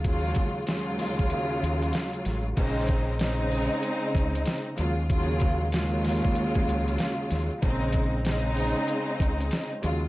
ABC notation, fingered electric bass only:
X:1
M:4/4
L:1/16
Q:"Swing 16ths" 1/4=95
K:Bbm
V:1 name="Fingered electric bass" clef=bass
E,,2 z4 z D,, z2 E,,2 z2 =A,,,2 | B,,,6- B,,, z3 D,,2 z2 E,,2- | E,,6- E,, z3 D,,2 z2 E,, z | B,,,6- B,,, z3 D,,2 z2 E,,2 |]